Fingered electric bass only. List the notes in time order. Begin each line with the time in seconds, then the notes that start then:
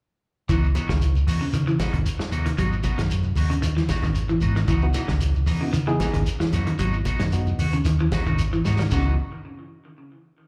0.49 C#2
0.89 C#2
1.27 E2
1.53 C#3
1.94 G#1
2.19 muted fingered electric bass stroke
2.32 D#2
2.58 G#1
2.98 F#2
3.36 D#2
3.63 D#2
4.03 G#1
4.42 G#2
4.68 C#2
5.09 C#2
5.46 E2
5.73 C#3
6.15 G#1
6.41 muted fingered electric bass stroke
6.53 F#2
6.79 G#1
7.20 F#2
7.59 D#2
7.85 D#2
8.27 G#1
8.65 G#2
8.92 C#2